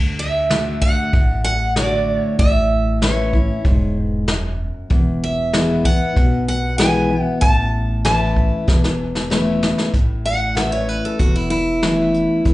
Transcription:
Already playing: D2 D3
0.19 E5
0.50 D3 A3 D4 F#4, snare, open hi-hat
0.82 F#5, kick
1.13 A1 A2, kick, open hi-hat
1.44 F#5
1.76 D3 A3 D4 F#4 D5, snare
2.18 C#5
2.39 A1 A2 E5, kick, open hi-hat
3.02 E3 A3 C#4 E4 C#5, snare
3.33 C#4 E4, kick
3.65 E1 G#2, kick, open hi-hat
4.05 B4
4.28 F#2, snare, open hi-hat
4.90 E1 E2, kick, open hi-hat
5.24 E5
5.53 E3 G#3 B3 E4, snare
5.84 B3 E4 F#5, kick
6.16 B1 B2, kick, open hi-hat
6.48 F#5
6.78 E3 G#3 B3 E4 G#5, snare
7.10 B3 E4
7.23 F#5
7.41 A1 A5, kick, open hi-hat
8.05 E3 A3 C#4 E4 A5, snare
8.36 kick
8.68 E1 E2, kick, snare
8.84 snare
9.04 G#5
9.15 snare
9.30 E3 A3 C#4 E4, snare
9.63 snare
9.78 snare
9.94 A1 A2, kick, closed hi-hat
10.25 F#5, closed hi-hat
10.55 E3 A3 C#4 E4 E5, snare, closed hi-hat
10.72 C#5
10.89 B4, closed hi-hat
11.05 A4
11.19 E1 E2 F#4, kick, closed hi-hat
11.36 E4
11.50 E4, closed hi-hat
11.82 E3 A3 C#4 E4, snare, closed hi-hat
12.14 closed hi-hat
12.45 E1 E2, kick, closed hi-hat

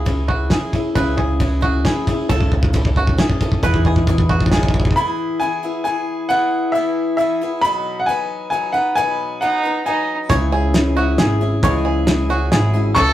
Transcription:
Already playing: C#2 C#3 C#4 E4 G#4 E5
0.05 E3 C#4 E4 G#4 E5, kick, ride
0.28 C#4 E4 F#4 G#4 E5, kick
0.50 E3 C#4 E4 G#4 E5, kick, snare, ride
0.73 C#4 E4 G#4 E5, kick, ride
0.95 C#2 C#3 E3 C#4 E4 G#4 B4 E5, kick, ride
1.17 C#4 E4 G#4 C#5, kick
1.40 E3 C#4 E4 G#4 E5, kick, ride
1.61 C#4 E4 F#4 G#4 E5, kick
1.84 E3 C#4 E4 G#4 E5, kick, snare, ride
2.07 C#4 E4 G#4 E5, kick, ride
2.29 C#2 C#3 E3 A3 C#4 E4 A4 E5, kick, ride
2.41 kick
2.51 C#4 E4 A4 E5, kick
2.63 kick
2.73 E3 A3 C#4 E4 A4 E5, kick, ride
2.85 kick
2.96 C#4 E4 F#4 A4 E5, kick
3.07 kick
3.17 E3 A3 C#4 E4 G#4 A4 E5, kick, snare, ride
3.30 kick
3.41 A3 C#4 E4 A4 E5, kick, ride
3.52 kick
3.63 E2 E3 B3 E4 G#4 B4 E5, kick
3.74 kick
3.85 B3 E4 G#4 D#5, kick
3.96 kick
4.07 E3 B3 E4 G#4 E5, kick
4.18 kick
4.29 B3 E4 F#4 G#4 E5, kick
4.41 kick
4.46 kick
4.51 E3 B3 E4 G#4 D#5 G#5, kick, snare
4.57 kick
4.63 kick
4.68 kick
4.73 B3 E4 G#4 E5, kick
4.80 kick
4.85 kick
4.91 kick
4.96 E3 B3 E4 G#4 B5
5.40 E3 B3 E4 G#4 G#5
5.63 B3 E4 G#4
5.84 E3 B3 E4 G#4 G#5
6.29 E3 B3 E4 G#4 F#5
6.72 E3 B3 E4 E5
6.76 G#4
7.17 E3 B3 E4 G#4 E5
7.41 B3 E4 G#4
7.61 B2 F#3 B3 D#4 B4 B5
8.00 F#5
8.06 F#3 B3 D#4 B4 G#5
8.50 F#3 B3 D#4 B4 G#5
8.72 B3 D#4 B4 F#5
8.95 B2 F#3 B3 D#4 B4 G#5
9.40 F#3 B3 D#4 B4 F#5
9.63 B3 D#4 B4
9.85 F#3 B3 D#4 B4 G#5
10.29 C#2 C#3 E3 G#3 C#4 E4 G#4 C#5 E5, kick, closed hi-hat
10.51 G#3 C#4 E4 G#4 C#5 E5
10.73 E3 G#3 C#4 E4 G#4 C#5 E5, snare, closed hi-hat
10.95 G#3 C#4 E4 F#4 G#4 C#5 E5
11.18 G#1 E3 G#3 C#4 E4 G#4 C#5 E5, snare, closed hi-hat
11.39 G#3 C#4 E4 G#4 C#5 E5
11.62 C#2 C#3 E3 G#3 C#4 E4 G#4 C#5 D#5, kick, closed hi-hat
11.84 G#3 C#4 E4 G#4 C#5 E5
12.06 E3 G#3 C#4 E4 G#4 C#5 E5, snare, closed hi-hat
12.29 G#3 C#4 E4 F#4 G#4 C#5 F#5 G#5
12.51 G#1 E3 G#3 C#4 E4 G#4 C#5 E5 F#5, snare, closed hi-hat
12.74 G#3 C#4 E4 G#4 C#5 E5
12.95 C#2 C#3 E3 A3 C#4 E4 A4 C#5 E5 C#6, kick, closed hi-hat

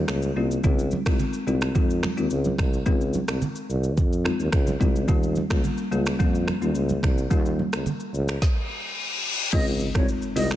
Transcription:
0.08 C#2, finger snap, cross-stick, shaker
0.22 shaker
0.36 C2 G3 A#3 C#4 F4
0.51 shaker
0.64 C#2 G#3 C4 D#4 F4, kick, low conga, shaker
0.79 shaker
0.91 high conga, shaker
1.06 C2 G#3 C4 D#4 F4, finger snap, kick, cross-stick, shaker
1.20 low conga, shaker
1.33 shaker
1.47 C2 G#3 C4 D#4 F4, shaker
1.61 finger snap, cross-stick, shaker
1.75 F2 G#3 C4 D#4 F4, kick, low conga, shaker
1.90 shaker
2.03 finger snap, cross-stick, high conga
2.17 D#2 G#3 C4 D#4 F4, shaker
2.30 C#2, shaker
2.44 high conga, shaker
2.58 C2, finger snap, kick, cross-stick, high conga, low conga, shaker
2.73 shaker
2.86 C#2 G#3 C4 D#4 F4, kick, low conga, shaker
3.01 shaker
3.13 high conga, shaker
3.28 C2, finger snap, cross-stick, shaker
3.42 low conga, shaker
3.55 shaker
3.70 C2, shaker
3.84 shaker
3.98 F2, kick, low conga, shaker
4.13 shaker
4.25 G#3 C4 D#4 F4, finger snap, cross-stick, high conga
4.39 D#2, shaker
4.52 C#2, finger snap, kick, cross-stick, shaker
4.67 high conga, shaker
4.80 C2 G#3 C4 D#4 F4, kick, high conga, low conga, shaker
4.96 shaker
5.08 D#2 G3 A#3 C#4 F4, kick, low conga, shaker
5.23 shaker
5.36 high conga, shaker
5.50 C#2 G3 A#3 C#4 F4, finger snap, kick, cross-stick, shaker
5.64 low conga, shaker
5.78 shaker
5.91 C#2 G3 A#3 C#4 F4, shaker
6.06 finger snap, cross-stick, shaker
6.19 F2 G3 A#3 C#4 F4, kick, low conga, shaker
6.35 shaker
6.48 finger snap, cross-stick, high conga
6.61 D#2 G3 A#3 C#4 F4, shaker
6.75 C#2, shaker
6.89 high conga, shaker
7.03 C2, finger snap, kick, cross-stick, high conga, low conga, shaker
7.18 shaker
7.30 D#2 G3 A#3 C#4 F4, kick, low conga, shaker
7.46 shaker
7.59 high conga
7.73 C#2, finger snap, cross-stick, shaker
7.86 low conga, shaker
8.00 shaker
8.14 C#2, shaker
8.28 finger snap, cross-stick, shaker
8.42 kick, snare, reverse cymbal
9.53 C#2 G#3 C4 D#4 F4 D#5, kick, crash, impact, shaker
9.68 shaker
9.80 shaker
9.95 C2 G#3 C4 D#4 F4 C#5, finger snap, kick, cross-stick, shaker
10.08 shaker
10.22 shaker
10.36 C2 G#3 C4 D#4 F4 D#5, open hi-hat, shaker
10.50 finger snap, cross-stick, shaker

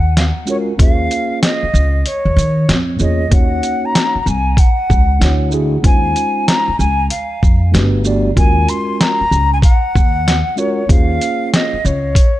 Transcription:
Already playing: D#2 F#5
0.17 F5, snare, closed hi-hat
0.46 G#3 C#4 F4 F#4, shaker
0.50 A#4 C#5
0.78 D#2 A#3 C#4 F4 G#4 C5 F5, kick, closed hi-hat
1.11 closed hi-hat, shaker
1.43 D#5, snare, closed hi-hat
1.63 muted upright bass stroke
1.74 C#2, shaker
2.06 C#5, closed hi-hat
2.25 D#2
2.36 D#3, closed hi-hat, shaker
2.69 F2, snare, closed hi-hat
2.98 E2 A#3 C#4 F4 G#4 C#5, shaker
3.02 D#5
3.30 D#2 A#3 C#4 D#4 F#4 C#5 F#5, kick, closed hi-hat
3.63 closed hi-hat, shaker
3.85 A#5
3.95 snare, closed hi-hat
4.15 muted upright bass stroke
4.23 C2 A#5, shaker
4.28 G#5
4.57 F#5, kick, closed hi-hat
4.90 C#2, kick, shaker
5.19 D2 A3 D4 E4 F#4, snare, closed hi-hat
5.23 C#5
5.50 A3 D4 E4 F#4 G#4, shaker
5.82 D#2 G#3 C#4 D#4 F4 G#5, kick, closed hi-hat
5.86 C5
6.16 closed hi-hat, shaker
6.48 A#5, snare, closed hi-hat
6.68 muted upright bass stroke
6.79 C#2 G#5, shaker
7.10 F5, closed hi-hat
7.43 F2, kick, shaker
7.71 G1 A3 D4 F#4 G4, snare, closed hi-hat
7.76 B4
8.03 A3 D4 F#4 G4 D5, shaker
8.35 D#2 G#3 C#4 F4 F#4 A#4 G#5, kick, closed hi-hat
8.68 C6, closed hi-hat, shaker
9.01 A#5, snare, closed hi-hat
9.21 muted upright bass stroke
9.31 C#2, shaker
9.53 G#5
9.62 F#5, kick, closed hi-hat
9.95 D#2, kick, shaker
10.28 snare, closed hi-hat
10.56 G#3 C#4 F4 F#4 A#4 C#5, shaker
10.88 D#2 A#3 C#4 F4 G#4 C5 F5, kick, closed hi-hat
11.21 closed hi-hat, shaker
11.54 D#5, snare, closed hi-hat
11.73 muted upright bass stroke
11.85 C#2 C#5, shaker
12.15 kick, closed hi-hat

